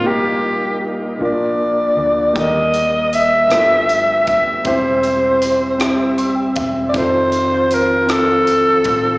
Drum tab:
HH |------|xxxxxx|xxxxxx|xxxxxx|
SD |------|---r--|---r--|---r--|
BD |------|o----o|o----o|o----o|